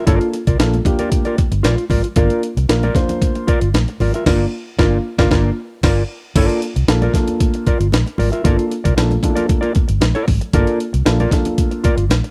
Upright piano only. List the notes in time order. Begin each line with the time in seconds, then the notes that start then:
0.07 A#3 D4 F4 A4
0.59 A#3 D4 F4 A4
0.85 A#3 D4 F4 G4
2.16 A#3 D4 F4 A#4
2.69 A#3 D4 F4 A#4
2.95 A#3 D4 F4 C5
4.26 A#3 D4 F4
4.79 A#3 D4 F4
5.18 A#3 D4 F4
5.31 A#3 D4 F4
6.36 A#3 D4 F4 A4
6.88 A#3 D4 F4 A4
7.14 A#3 D4 F4 A4
8.45 A#3 D4 F4 A4
8.97 A#3 D4 F4 A4
9.23 A3 D4 F4 A4
9.30 A#3
10.54 A#3 D4 F4 A4
11.05 A#3 D4 F4 A4
11.32 A#3 D4 F4 A4